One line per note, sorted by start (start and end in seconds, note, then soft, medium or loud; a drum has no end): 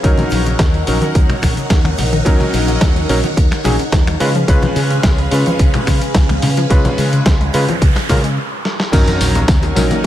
0.03 0.15 D#2 medium
0.03 0.12 C#3 medium
0.03 0.84 F#3 medium
0.03 0.84 C#4 medium
0.03 4.17 D#4 medium
0.03 0.84 D#4 medium
0.03 4.17 A#4 medium
0.03 0.85 A#4 loud
0.03 4.16 C#5 medium
0.03 4.16 F#5 medium
0.03 kick loud
0.03 closed hi-hat medium
0.03 shaker soft
0.18 0.24 D#3 medium
0.18 closed hi-hat soft
0.18 high conga medium
0.18 low conga medium
0.30 0.54 A#1 medium
0.30 0.40 F#3 medium
0.30 open hi-hat loud
0.30 shaker medium
0.46 0.51 C#3 medium
0.46 closed hi-hat soft
0.46 shaker soft
0.59 0.82 D#2 medium
0.59 0.65 D#3 medium
0.59 kick loud
0.59 snare loud
0.59 closed hi-hat medium
0.59 high conga medium
0.59 shaker soft
0.74 0.79 F#3 medium
0.74 closed hi-hat soft
0.87 0.99 A#1 medium
0.87 0.91 C#3 medium
0.87 2.23 F#3 medium
0.87 2.23 C#4 medium
0.87 2.23 D#4 medium
0.87 2.24 A#4 medium
0.87 open hi-hat loud
0.87 shaker medium
1.01 1.07 D#3 loud
1.01 closed hi-hat soft
1.01 high conga medium
1.01 shaker soft
1.15 1.26 D#2 medium
1.15 1.23 C#3 medium
1.15 kick loud
1.15 closed hi-hat medium
1.15 shaker soft
1.29 1.35 D#3 medium
1.29 finger snap medium
1.29 closed hi-hat soft
1.29 low conga medium
1.42 1.54 A#1 medium
1.42 1.51 F#3 medium
1.42 finger snap medium
1.42 kick medium
1.42 open hi-hat loud
1.42 high conga medium
1.42 shaker medium
1.57 1.62 C#3 medium
1.57 muted fingered electric bass stroke soft
1.57 closed hi-hat soft
1.57 shaker soft
1.70 1.93 D#2 medium
1.70 1.76 D#3 medium
1.70 kick loud
1.70 snare loud
1.70 closed hi-hat medium
1.70 shaker soft
1.84 1.90 F#3 medium
1.84 finger snap medium
1.84 closed hi-hat soft
1.84 high conga medium
1.97 2.21 A#1 medium
1.97 2.02 C#3 medium
1.97 open hi-hat loud
1.97 low conga medium
1.97 shaker medium
2.12 2.18 D#3 loud
2.12 closed hi-hat soft
2.12 shaker soft
2.25 2.38 D#2 medium
2.25 2.34 C#3 medium
2.25 3.06 F#3 medium
2.25 3.06 C#4 medium
2.25 3.06 D#4 medium
2.25 3.07 A#4 loud
2.25 kick loud
2.25 closed hi-hat medium
2.25 shaker soft
2.40 2.45 D#3 medium
2.40 closed hi-hat soft
2.40 high conga medium
2.40 low conga medium
2.53 2.76 A#1 loud
2.53 2.62 F#3 medium
2.53 open hi-hat loud
2.53 shaker medium
2.68 2.73 C#3 medium
2.68 closed hi-hat soft
2.68 shaker soft
2.81 3.04 D#2 medium
2.81 2.87 D#3 medium
2.81 kick loud
2.81 snare loud
2.81 closed hi-hat medium
2.81 high conga medium
2.81 shaker soft
2.96 3.01 F#3 medium
2.96 closed hi-hat soft
3.09 3.21 A#1 loud
3.09 3.13 C#3 medium
3.09 3.19 F#3 medium
3.09 3.19 C#4 medium
3.09 3.19 D#4 medium
3.09 3.19 A#4 loud
3.09 open hi-hat loud
3.09 shaker medium
3.24 3.29 D#3 loud
3.24 closed hi-hat soft
3.24 high conga medium
3.24 shaker medium
3.37 3.49 D#2 medium
3.37 3.45 C#3 medium
3.37 kick loud
3.37 closed hi-hat medium
3.37 shaker soft
3.51 3.57 D#3 medium
3.51 finger snap medium
3.51 snare soft
3.51 closed hi-hat soft
3.64 3.76 A#1 medium
3.64 3.74 F#3 medium
3.64 3.73 F#3 medium
3.64 3.74 C#4 medium
3.64 3.75 D#4 medium
3.64 3.75 G#4 loud
3.64 finger snap medium
3.64 open hi-hat loud
3.64 high conga medium
3.64 low conga medium
3.64 shaker loud
3.79 3.85 C#3 medium
3.79 muted fingered electric bass stroke soft
3.79 closed hi-hat medium
3.79 shaker medium
3.92 4.15 D#2 medium
3.92 3.98 D#3 medium
3.92 kick loud
3.92 snare loud
3.92 closed hi-hat medium
3.92 shaker soft
4.07 4.12 F#3 medium
4.07 finger snap medium
4.07 closed hi-hat soft
4.07 high conga medium
4.20 4.43 C#3 medium
4.20 4.24 C#3 medium
4.20 4.30 G#3 medium
4.20 8.33 C#4 medium
4.20 4.30 C#4 medium
4.20 4.30 F4 medium
4.20 8.33 G#4 medium
4.20 8.33 B4 medium
4.20 4.30 B4 loud
4.20 8.33 F5 medium
4.20 open hi-hat loud
4.20 shaker medium
4.35 4.40 F3 loud
4.35 closed hi-hat medium
4.35 shaker soft
4.48 4.60 C#2 loud
4.48 4.57 C#3 medium
4.48 5.28 G#3 medium
4.48 5.28 C#4 medium
4.48 5.29 F4 medium
4.48 5.29 B4 loud
4.48 kick loud
4.48 closed hi-hat medium
4.48 shaker soft
4.62 4.68 F3 medium
4.62 closed hi-hat soft
4.62 high conga medium
4.62 low conga medium
4.76 4.98 C#3 loud
4.76 4.84 G#3 medium
4.76 open hi-hat loud
4.76 shaker loud
4.90 4.96 C#3 medium
4.90 closed hi-hat medium
4.90 shaker medium
5.03 5.26 C#2 medium
5.03 5.09 F3 medium
5.03 kick loud
5.03 snare loud
5.03 closed hi-hat medium
5.03 high conga medium
5.03 shaker soft
5.18 5.24 G#3 medium
5.18 closed hi-hat soft
5.31 5.43 C#3 loud
5.31 5.35 C#3 medium
5.31 6.67 G#3 medium
5.31 6.67 C#4 medium
5.31 6.68 F4 medium
5.31 6.68 B4 medium
5.31 open hi-hat loud
5.31 shaker loud
5.46 5.51 F3 loud
5.46 closed hi-hat medium
5.46 high conga medium
5.46 shaker medium
5.59 5.71 C#2 medium
5.59 5.68 C#3 medium
5.59 kick loud
5.59 closed hi-hat medium
5.59 shaker soft
5.74 5.79 F3 medium
5.74 finger snap medium
5.74 closed hi-hat soft
5.74 low conga medium
5.87 5.99 C#3 loud
5.87 5.96 G#3 medium
5.87 finger snap medium
5.87 kick medium
5.87 open hi-hat loud
5.87 high conga medium
5.87 shaker loud
6.01 6.07 C#3 medium
6.01 muted fingered electric bass stroke soft
6.01 closed hi-hat medium
6.01 shaker medium
6.15 6.37 C#2 medium
6.15 6.21 F3 medium
6.15 kick loud
6.15 snare loud
6.15 closed hi-hat medium
6.15 shaker soft
6.29 6.35 G#3 medium
6.29 finger snap medium
6.29 closed hi-hat soft
6.29 high conga medium
6.42 6.65 C#3 medium
6.42 6.46 C#3 medium
6.42 open hi-hat loud
6.42 low conga medium
6.42 shaker medium
6.56 6.62 F3 loud
6.56 closed hi-hat medium
6.56 shaker soft
6.70 6.82 C#2 loud
6.70 6.79 C#3 medium
6.70 7.50 G#3 loud
6.70 7.50 C#4 medium
6.70 7.51 F4 medium
6.70 7.51 B4 loud
6.70 kick loud
6.70 closed hi-hat medium
6.70 noise sweep medium
6.70 shaker soft
6.85 6.90 F3 medium
6.85 closed hi-hat soft
6.85 high conga medium
6.85 low conga medium
6.98 7.20 C#3 loud
6.98 7.07 G#3 medium
6.98 open hi-hat loud
6.98 shaker medium
7.12 7.18 C#3 medium
7.12 closed hi-hat medium
7.12 shaker medium
7.26 7.48 C#2 medium
7.26 7.32 F3 medium
7.26 kick loud
7.26 snare loud
7.26 closed hi-hat medium
7.26 high conga medium
7.26 shaker soft
7.41 7.46 G#3 medium
7.41 closed hi-hat soft
7.54 7.65 C#3 loud
7.54 7.57 C#3 medium
7.54 7.63 G#3 medium
7.54 7.64 C#4 medium
7.54 7.64 F4 medium
7.54 7.64 B4 loud
7.54 open hi-hat loud
7.54 shaker loud
7.69 7.74 F3 loud
7.69 closed hi-hat medium
7.69 high conga medium
7.69 shaker medium
7.82 7.93 C#2 medium
7.82 7.90 C#3 medium
7.82 kick loud
7.82 closed hi-hat medium
7.82 shaker soft
7.96 8.01 F3 medium
7.96 finger snap medium
7.96 snare soft
7.96 closed hi-hat soft
8.09 8.37 C#3 loud
8.09 8.19 G#3 medium
8.09 8.15 C#4 medium
8.09 8.19 C#4 medium
8.09 8.19 F4 medium
8.09 8.20 A#4 loud
8.09 finger snap medium
8.09 kick medium
8.09 open hi-hat loud
8.09 high conga medium
8.09 low conga loud
8.09 shaker medium
8.24 8.31 G#3 loud
8.24 closed hi-hat medium
8.24 shaker medium
8.65 snare medium
8.80 snare medium
8.92 9.04 D#2 medium
8.92 8.98 C#3 medium
8.92 9.73 F#3 loud
8.92 9.73 C#4 medium
8.92 10.06 D#4 medium
8.92 9.73 D#4 medium
8.92 10.06 A#4 medium
8.92 9.73 A#4 loud
8.92 10.06 C#5 medium
8.92 10.06 F#5 medium
8.92 kick loud
8.92 closed hi-hat medium
8.92 tambourine soft
8.92 crash loud
8.92 sub drop medium
8.92 high bongo medium
8.92 shaker soft
9.07 9.12 D#3 loud
9.07 closed hi-hat soft
9.07 tambourine soft
9.07 high conga loud
9.21 9.43 A#1 loud
9.21 9.26 F#3 loud
9.21 open hi-hat loud
9.21 tambourine medium
9.21 shaker medium
9.35 9.43 A#3 medium
9.35 closed hi-hat soft
9.35 tambourine soft
9.35 high bongo medium
9.35 shaker medium
9.48 9.71 D#2 medium
9.48 9.54 C#3 loud
9.48 kick loud
9.48 snare loud
9.48 closed hi-hat medium
9.48 tambourine soft
9.48 high conga medium
9.48 shaker soft
9.63 9.66 D#3 loud
9.63 closed hi-hat soft
9.63 tambourine soft
9.63 high bongo medium
9.75 9.88 A#1 loud
9.75 10.06 F#3 medium
9.75 9.82 F#3 medium
9.75 10.06 C#4 medium
9.75 10.06 D#4 medium
9.75 10.06 A#4 medium
9.75 open hi-hat loud
9.75 tambourine medium
9.75 low conga medium
9.75 shaker loud
9.90 9.98 A#3 medium
9.90 closed hi-hat soft
9.90 tambourine soft
9.90 high conga loud
9.90 shaker medium